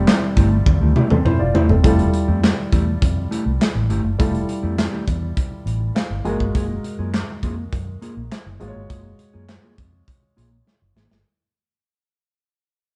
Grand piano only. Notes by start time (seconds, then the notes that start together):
Already playing: G3 C4 E4 F4 A4
1.10 C4 A4
1.25 E4 C5
1.39 F4 D5
1.54 E4 C5
1.70 C4 A4
1.83 G3 E4 F4 A4
4.19 G3 E4 F4 A4
5.95 F5
6.25 G#3 F4 F#4 A#4 G#5
8.60 G#3 F4 F#4 C5
8.68 C#5